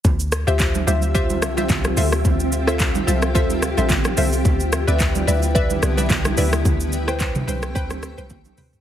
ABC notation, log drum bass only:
X:1
M:4/4
L:1/16
Q:"Swing 16ths" 1/4=109
K:Ddor
V:1 name="Log drum bass" clef=bass
D,,3 D,,3 D,,4 C,,2 C,,2 D,,2 | D,,6 C,,2 D,,3 A,,,3 C,,2 | D,,3 D,,3 D,,4 C,,2 C,,2 D,,2 | D,,6 C,,2 D,,3 C,,3 D,,2 |]